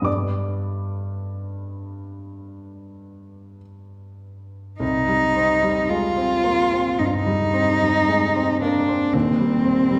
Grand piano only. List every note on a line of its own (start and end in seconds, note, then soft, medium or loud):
0.02 4.74 G2 soft
0.02 4.75 G3 soft
0.02 4.75 B3 soft
0.02 4.76 D4 soft
0.02 3.61 D6 medium
0.06 3.57 D5 soft
4.80 6.95 C2 soft
5.08 5.52 G3 soft
5.36 5.80 C4 soft
5.63 6.06 G3 soft
5.90 6.18 G#3 soft
6.17 6.61 C4 soft
6.44 6.72 A#3 soft
6.72 7.16 C4 soft
7.00 7.44 G2 soft
7.26 7.71 G3 soft
7.53 7.98 C4 soft
7.82 8.25 G3 soft
8.08 8.36 G#3 soft
8.35 8.78 C4 soft
8.62 8.88 A#3 soft
8.88 9.14 C4 soft
9.12 9.99 D#1 medium
9.12 9.99 D#2 medium
9.40 9.81 G3 soft
9.65 9.99 C4 soft
9.91 9.99 G3 soft